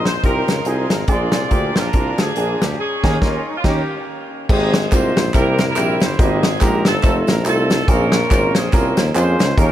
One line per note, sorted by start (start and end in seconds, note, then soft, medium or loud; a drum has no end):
0.00 0.17 A#1 medium
0.00 1.06 D#5 medium
0.00 2.75 F5 medium
0.00 1.07 G#5 medium
0.00 1.07 C6 medium
0.05 0.22 C5 medium
0.05 snare loud
0.05 closed hi-hat medium
0.23 0.44 C2 loud
0.23 0.49 C4 medium
0.23 0.50 D#4 medium
0.23 1.05 D#4 medium
0.23 0.50 F4 medium
0.23 1.05 F4 medium
0.23 0.50 G4 medium
0.23 0.64 A#4 loud
0.23 kick medium
0.23 closed hi-hat medium
0.47 0.63 C#2 medium
0.47 snare loud
0.47 closed hi-hat medium
0.65 0.86 C2 loud
0.65 0.92 C4 medium
0.65 0.92 D#4 medium
0.65 0.92 F4 medium
0.65 0.92 G#4 medium
0.65 0.91 G#4 medium
0.65 closed hi-hat medium
0.90 1.05 G#1 medium
0.90 1.09 A#4 medium
0.90 snare loud
0.90 closed hi-hat medium
1.08 1.29 A#1 loud
1.08 1.72 A#2 medium
1.08 1.34 A#3 medium
1.08 1.34 D4 medium
1.08 1.75 F4 medium
1.08 1.35 F4 medium
1.08 1.90 G#4 medium
1.08 1.35 G#4 loud
1.08 2.77 D5 medium
1.08 1.76 D5 loud
1.08 3.61 G#5 medium
1.08 4.46 A#5 medium
1.08 kick loud
1.08 closed hi-hat medium
1.32 1.48 C2 medium
1.32 snare loud
1.32 closed hi-hat medium
1.51 1.72 D2 medium
1.51 1.77 A#3 medium
1.51 1.77 D4 medium
1.51 1.77 F4 medium
1.51 1.77 G4 medium
1.51 kick medium
1.51 closed hi-hat medium
1.75 1.90 A#1 medium
1.75 2.18 D4 medium
1.75 2.18 F4 medium
1.75 2.19 A#4 loud
1.75 snare loud
1.75 closed hi-hat medium
1.93 2.14 C2 medium
1.93 2.20 A#3 medium
1.93 2.20 D4 medium
1.93 2.20 F4 medium
1.93 2.20 A#4 medium
1.93 kick loud
1.93 closed hi-hat medium
2.17 2.33 D2 medium
2.17 2.76 D4 medium
2.17 2.76 F4 medium
2.17 2.62 G#4 loud
2.17 snare loud
2.17 closed hi-hat medium
2.35 2.56 A#1 medium
2.35 2.62 A#3 medium
2.35 2.62 D4 medium
2.35 2.63 F4 medium
2.35 2.63 G#4 medium
2.35 closed hi-hat medium
2.60 2.76 D2 medium
2.60 2.80 G4 medium
2.60 snare loud
2.60 closed hi-hat medium
2.79 3.61 C#4 medium
2.79 3.19 G#4 loud
2.79 4.47 C#5 medium
2.79 3.62 D#5 medium
3.03 3.16 D#2 medium
3.03 3.16 D#3 loud
3.03 3.16 A#3 medium
3.03 3.16 C#4 medium
3.03 3.16 D#4 medium
3.03 3.16 G#4 loud
3.03 kick loud
3.03 snare loud
3.03 crash medium
3.21 3.38 D#2 medium
3.21 3.38 A#3 medium
3.21 3.38 C#4 medium
3.21 3.39 D#4 medium
3.21 3.47 F4 medium
3.21 kick loud
3.21 snare medium
3.49 3.56 D#4 medium
3.57 3.61 F4 medium
3.63 3.81 D#2 medium
3.63 3.81 D#3 medium
3.63 3.80 A#3 medium
3.63 4.46 A#3 medium
3.63 3.81 C#4 loud
3.63 4.46 C#4 medium
3.63 3.81 D#4 medium
3.63 3.81 G4 medium
3.63 4.05 G4 medium
3.63 4.48 D#5 medium
3.63 4.48 G5 medium
3.63 kick loud
3.63 snare loud
3.63 crash medium
4.49 4.85 G#1 loud
4.49 5.12 G#2 medium
4.49 4.75 G#3 medium
4.49 4.75 A#3 medium
4.49 4.75 C4 medium
4.49 5.30 C4 medium
4.49 4.75 D#4 medium
4.49 4.90 D#4 medium
4.49 4.75 G4 medium
4.49 4.90 G#4 medium
4.49 kick loud
4.49 crash loud
4.49 tambourine medium
4.74 snare loud
4.74 closed hi-hat medium
4.74 tambourine medium
4.91 5.13 C2 medium
4.91 5.18 G#3 medium
4.91 5.18 A#3 medium
4.91 5.18 C4 medium
4.91 5.31 D#4 medium
4.91 5.18 D#4 medium
4.91 5.18 F4 medium
4.91 5.31 G4 medium
4.91 5.35 C5 loud
4.91 kick medium
4.91 clap medium
4.91 closed hi-hat medium
4.91 tambourine loud
5.16 5.31 A#1 medium
5.16 snare loud
5.16 closed hi-hat medium
5.16 tambourine medium
5.33 5.70 C2 loud
5.33 5.97 C3 medium
5.33 5.60 G3 medium
5.33 5.60 A#3 medium
5.33 5.60 C4 medium
5.33 5.67 E4 medium
5.33 5.60 E4 medium
5.33 5.66 G4 medium
5.33 5.60 G4 medium
5.33 5.68 A#4 medium
5.33 kick loud
5.33 clap medium
5.33 closed hi-hat medium
5.33 tambourine medium
5.58 snare loud
5.58 closed hi-hat medium
5.58 tambourine medium
5.67 6.16 E4 medium
5.67 6.15 G4 medium
5.67 5.99 A#4 medium
5.76 5.97 A#1 loud
5.76 6.02 G3 medium
5.76 6.02 A#3 medium
5.76 6.02 C4 medium
5.76 6.03 E4 medium
5.76 6.03 G4 medium
5.76 clap medium
5.76 closed hi-hat medium
5.76 tambourine medium
6.00 6.16 G1 medium
6.00 6.19 C5 medium
6.00 snare loud
6.00 closed hi-hat medium
6.00 tambourine medium
6.18 6.55 G#1 loud
6.18 6.82 G#2 medium
6.18 6.44 G#3 medium
6.18 6.45 A#3 medium
6.18 6.85 C4 medium
6.18 6.45 D#4 medium
6.18 6.85 D#4 medium
6.18 6.45 F4 medium
6.18 6.45 G4 medium
6.18 6.62 G#4 medium
6.18 kick loud
6.18 closed hi-hat loud
6.18 tambourine medium
6.43 snare loud
6.43 closed hi-hat medium
6.43 tambourine medium
6.61 6.82 A#1 medium
6.61 6.87 G#3 medium
6.61 6.87 A#3 medium
6.61 6.87 D#4 medium
6.61 6.87 F4 medium
6.61 6.87 G4 medium
6.61 6.86 A#4 loud
6.61 kick medium
6.61 clap medium
6.61 closed hi-hat medium
6.61 tambourine medium
6.85 7.01 G1 medium
6.85 7.46 C4 medium
6.85 7.46 D#4 medium
6.85 7.17 A4 loud
6.85 snare loud
6.85 closed hi-hat medium
6.85 tambourine medium
7.03 7.24 F1 loud
7.03 7.29 A3 medium
7.03 7.29 C4 medium
7.03 7.29 D#4 medium
7.03 7.30 F4 medium
7.03 7.30 A4 medium
7.03 kick loud
7.03 clap medium
7.03 closed hi-hat medium
7.03 tambourine medium
7.27 7.47 A1 loud
7.27 7.45 A#4 medium
7.27 snare loud
7.27 closed hi-hat medium
7.27 tambourine medium
7.45 7.82 C2 loud
7.45 7.72 A3 medium
7.45 7.72 C4 medium
7.45 7.86 C4 medium
7.45 7.72 D#4 medium
7.45 7.86 D#4 medium
7.45 7.72 F4 medium
7.45 7.72 A4 medium
7.45 7.89 A4 medium
7.45 clap medium
7.45 closed hi-hat medium
7.45 tambourine medium
7.70 snare loud
7.70 closed hi-hat medium
7.70 tambourine medium
7.88 8.24 A#1 loud
7.88 8.51 A#2 medium
7.88 8.14 A#3 medium
7.88 8.14 C4 medium
7.88 8.54 C#4 medium
7.88 8.14 C#4 medium
7.88 8.69 F4 medium
7.88 8.14 F4 medium
7.88 8.14 G#4 medium
7.88 8.55 A#4 loud
7.88 kick loud
7.88 closed hi-hat loud
7.88 tambourine medium
8.12 snare loud
8.12 closed hi-hat medium
8.12 tambourine medium
8.30 8.51 G#1 loud
8.30 8.56 A#3 medium
8.30 8.56 C4 medium
8.30 8.56 C#4 medium
8.30 8.57 F4 medium
8.30 8.57 A#4 medium
8.30 kick loud
8.30 clap loud
8.30 closed hi-hat medium
8.30 tambourine loud
8.55 8.70 A#1 medium
8.55 9.36 C4 medium
8.55 9.36 C#4 medium
8.55 8.91 G#4 loud
8.55 snare loud
8.55 closed hi-hat medium
8.55 tambourine medium
8.73 8.94 C2 loud
8.73 8.99 A#3 medium
8.73 8.99 C4 medium
8.73 8.99 C#4 medium
8.73 8.99 F4 medium
8.73 8.99 A#4 medium
8.73 kick loud
8.73 clap medium
8.73 closed hi-hat medium
8.73 tambourine medium
8.97 9.13 D#2 loud
8.97 snare loud
8.97 closed hi-hat medium
8.97 tambourine medium
9.14 9.36 F2 loud
9.14 9.41 A#3 medium
9.14 9.41 C4 medium
9.14 9.41 C#4 medium
9.14 9.41 F4 medium
9.14 9.55 F4 medium
9.14 9.41 G#4 medium
9.14 9.55 G#4 medium
9.14 9.55 C5 loud
9.14 clap medium
9.14 closed hi-hat medium
9.14 tambourine medium
9.39 9.55 C#2 loud
9.39 snare loud
9.39 closed hi-hat medium
9.39 tambourine medium
9.57 9.72 D#2 loud
9.57 9.72 D#3 medium
9.57 9.72 A#3 medium
9.57 9.72 C#4 medium
9.57 9.72 D#4 medium
9.57 9.72 G#4 medium
9.57 9.72 A#4 loud
9.57 9.72 A#4 medium
9.57 kick loud
9.57 closed hi-hat loud
9.57 tambourine medium